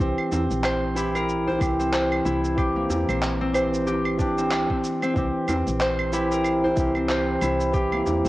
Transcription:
0.00 0.15 C2 loud
0.00 0.92 E3 medium
0.00 0.82 A#3 medium
0.00 0.31 C4 medium
0.00 0.93 C4 medium
0.00 1.83 D4 medium
0.00 1.06 G4 medium
0.00 0.94 G4 medium
0.00 0.37 C5 medium
0.00 kick loud
0.00 cabasa soft
0.18 claves medium
0.32 0.47 E2 medium
0.32 1.79 C4 medium
0.32 djembe slap medium
0.32 djembe tone soft
0.32 djembe bass medium
0.32 cabasa medium
0.51 1.57 A#1 medium
0.51 cabasa soft
0.64 1.47 C5 medium
0.64 clap loud
0.64 cabasa soft
0.64 claves medium
0.95 1.57 E3 medium
0.95 1.58 C4 medium
0.95 2.25 E4 medium
0.95 1.58 G4 medium
0.95 cabasa medium
1.15 3.27 A#4 medium
1.15 djembe slap soft
1.15 cabasa soft
1.15 claves medium
1.29 cabasa soft
1.47 1.93 C5 medium
1.47 djembe bass medium
1.58 2.21 C2 medium
1.58 2.53 E3 medium
1.58 2.54 C4 medium
1.58 kick loud
1.58 cabasa medium
1.58 claves medium
1.62 2.55 G4 medium
1.79 3.08 C4 medium
1.79 cabasa soft
1.93 3.54 C5 medium
1.93 clap loud
1.93 cabasa soft
2.12 claves medium
2.25 2.86 C2 medium
2.25 4.86 E4 medium
2.25 cabasa medium
2.45 cabasa soft
2.55 3.50 E3 medium
2.55 3.51 C4 medium
2.55 3.86 G4 medium
2.55 kick loud
2.55 cabasa soft
2.55 claves medium
2.59 3.52 G4 medium
2.76 5.98 A#3 medium
2.90 3.05 E2 medium
2.90 djembe slap medium
2.90 djembe bass medium
2.90 cabasa medium
3.09 4.53 A#1 medium
3.09 3.41 C4 medium
3.09 cabasa soft
3.09 claves medium
3.22 clap loud
3.22 cabasa soft
3.41 4.38 C4 medium
3.53 4.15 E3 medium
3.53 4.16 C4 medium
3.53 4.17 G4 medium
3.53 5.53 C5 medium
3.53 cabasa medium
3.53 claves medium
3.74 cabasa soft
3.87 6.22 G4 medium
3.87 djembe tone medium
3.87 cabasa soft
4.05 claves medium
4.18 5.12 E3 medium
4.18 5.13 C4 medium
4.18 6.99 D4 medium
4.18 5.14 G4 medium
4.18 kick loud
4.18 djembe tone medium
4.18 cabasa medium
4.38 4.70 C4 medium
4.38 djembe slap soft
4.38 cabasa soft
4.51 4.66 C2 medium
4.51 clap loud
4.51 cabasa soft
4.51 claves medium
4.70 5.02 C4 medium
4.70 kick medium
4.84 cabasa medium
5.02 5.16 C4 medium
5.02 cabasa soft
5.02 claves medium
5.14 5.31 C2 medium
5.14 6.09 E3 medium
5.14 6.10 C4 medium
5.14 5.48 C4 medium
5.14 kick loud
5.14 cabasa soft
5.18 6.11 G4 medium
5.48 5.63 E2 medium
5.48 6.96 C4 medium
5.48 djembe slap medium
5.48 djembe tone soft
5.48 djembe bass medium
5.48 cabasa medium
5.48 claves medium
5.67 6.73 A#1 medium
5.67 cabasa soft
5.80 6.63 C5 medium
5.80 clap loud
5.80 cabasa soft
5.99 claves medium
6.12 6.74 E3 medium
6.12 6.74 C4 medium
6.12 7.41 E4 loud
6.12 6.75 G4 loud
6.12 cabasa medium
6.32 8.29 A#4 medium
6.32 djembe slap soft
6.32 cabasa soft
6.44 cabasa soft
6.44 claves medium
6.64 7.09 C5 medium
6.64 djembe bass medium
6.75 7.37 C2 medium
6.75 7.70 E3 medium
6.75 7.71 C4 medium
6.75 kick loud
6.75 cabasa medium
6.80 7.72 G4 medium
6.95 8.24 C4 medium
6.95 cabasa soft
6.95 claves medium
7.09 8.29 C5 medium
7.09 clap loud
7.09 cabasa soft
7.41 8.02 C2 loud
7.41 8.29 E4 loud
7.41 cabasa medium
7.41 claves medium
7.60 cabasa soft
7.72 8.29 E3 medium
7.72 8.29 C4 medium
7.72 8.29 G4 medium
7.72 kick loud
7.72 cabasa soft
7.76 8.29 G4 medium
7.92 8.29 A#3 medium
7.92 djembe tone medium
7.92 claves medium
8.06 8.21 E2 medium
8.06 djembe slap medium
8.06 djembe bass medium
8.06 cabasa medium
8.25 8.29 A#1 medium
8.25 8.29 C4 medium
8.25 cabasa soft

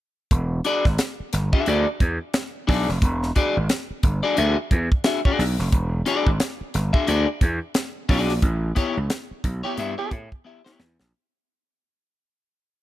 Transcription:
0.31 0.60 E1 loud
0.31 kick medium
0.31 closed hi-hat medium
0.65 0.84 D4 medium
0.65 0.84 F#4 medium
0.65 0.85 G#4 medium
0.65 0.85 D5 loud
0.65 closed hi-hat medium
0.85 0.97 G#1 medium
0.85 kick medium
0.85 snare soft
0.98 snare loud
0.98 closed hi-hat loud
1.20 muted slap bass stroke soft
1.33 1.50 G1 medium
1.33 snare soft
1.33 closed hi-hat loud
1.53 1.66 D4 medium
1.53 1.66 F#4 medium
1.53 1.67 G#4 medium
1.53 1.68 E5 medium
1.53 kick loud
1.66 1.84 D2 medium
1.66 1.86 D4 medium
1.66 1.86 F#4 medium
1.66 1.86 G#4 medium
1.66 1.87 D5 loud
1.66 closed hi-hat medium
2.00 2.18 E2 loud
2.00 kick medium
2.00 closed hi-hat medium
2.34 snare loud
2.34 closed hi-hat medium
2.67 2.86 B1 medium
2.67 2.87 D4 medium
2.67 2.87 F#4 medium
2.67 2.88 G#4 medium
2.67 2.88 D5 medium
2.67 kick loud
2.67 open hi-hat medium
2.89 3.00 F1 medium
2.89 snare soft
3.02 3.30 E1 loud
3.02 kick loud
3.02 closed hi-hat medium
3.23 snare soft
3.36 3.55 D4 medium
3.36 3.55 F#4 medium
3.36 3.55 G#4 medium
3.36 3.56 D5 medium
3.36 kick medium
3.36 closed hi-hat medium
3.57 3.68 G#1 medium
3.69 snare loud
3.69 closed hi-hat loud
3.90 muted slap bass stroke medium
4.03 4.21 G1 medium
4.03 kick loud
4.03 closed hi-hat medium
4.23 4.35 D4 medium
4.23 4.36 F#4 medium
4.23 4.36 G#4 medium
4.23 4.36 D5 medium
4.36 4.55 D2 medium
4.36 4.56 D4 medium
4.36 4.56 F#4 medium
4.36 4.57 G#4 loud
4.36 4.57 E5 loud
4.36 closed hi-hat medium
4.71 4.88 E2 loud
4.71 kick medium
4.71 closed hi-hat medium
4.92 kick medium
5.04 5.20 D4 medium
5.04 5.20 F#4 medium
5.04 5.20 G#4 medium
5.04 5.20 E5 medium
5.04 snare loud
5.04 closed hi-hat medium
5.25 5.43 D4 medium
5.25 5.43 F#4 medium
5.25 5.43 G#4 medium
5.25 5.42 D5 medium
5.25 kick loud
5.39 5.56 B1 medium
5.39 snare soft
5.39 open hi-hat medium
5.59 5.70 F1 medium
5.59 snare soft
5.72 6.01 E1 loud
5.72 kick medium
5.72 closed hi-hat medium
6.06 6.29 D4 medium
6.06 6.29 F#4 medium
6.06 6.29 G#4 medium
6.06 6.30 D5 loud
6.06 closed hi-hat medium
6.27 6.38 G#1 medium
6.27 kick loud
6.40 snare loud
6.40 closed hi-hat loud
6.61 muted slap bass stroke medium
6.74 6.91 G1 medium
6.74 snare soft
6.74 closed hi-hat medium
6.93 7.06 D4 medium
6.93 7.06 F#4 medium
6.93 7.07 G#4 medium
6.93 7.06 E5 medium
6.93 kick loud
7.07 7.25 D2 medium
7.07 7.26 D4 medium
7.07 7.26 F#4 medium
7.07 7.27 G#4 medium
7.07 7.27 D5 loud
7.07 closed hi-hat medium
7.41 7.58 E2 loud
7.41 kick medium
7.41 closed hi-hat medium
7.75 snare loud
7.75 closed hi-hat medium
8.09 8.30 B1 medium
8.09 8.31 D4 medium
8.09 8.32 F#4 medium
8.09 8.32 G#4 medium
8.09 8.32 D5 medium
8.09 kick loud
8.09 open hi-hat medium
8.29 8.41 A#1 medium
8.29 snare soft
8.42 8.71 A1 loud
8.42 kick loud
8.42 closed hi-hat medium
8.75 8.95 B3 medium
8.75 8.95 E4 medium
8.75 8.96 G4 medium
8.75 8.96 C#5 medium
8.75 kick medium
8.75 closed hi-hat medium
8.97 9.08 C#2 medium
9.10 snare loud
9.10 closed hi-hat loud
9.31 muted slap bass stroke soft
9.44 9.61 B1 medium
9.44 kick loud
9.44 closed hi-hat medium
9.64 9.77 B3 medium
9.64 9.77 E4 medium
9.64 9.77 G4 medium
9.64 9.73 G4 medium
9.64 9.77 C#5 medium
9.78 9.95 G2 loud
9.78 9.93 B3 medium
9.78 9.93 E4 medium
9.78 9.93 G4 medium
9.78 9.94 E5 medium
9.78 closed hi-hat medium
9.98 10.12 B3 medium
9.98 10.11 E4 medium
9.98 10.11 G4 medium
9.98 10.10 G4 loud
9.98 10.11 C#5 medium
10.11 10.29 A2 medium
10.11 kick medium
10.11 closed hi-hat medium
10.32 kick medium
10.45 10.60 B3 medium
10.45 10.60 E4 medium
10.45 10.61 G4 medium
10.45 10.61 E5 medium
10.64 10.83 B3 medium
10.64 10.83 E4 medium
10.64 10.83 G4 medium
10.64 10.82 C#5 medium
10.64 snare medium
10.80 10.96 E2 medium
10.80 snare medium
11.00 11.11 A#1 medium
11.00 snare medium

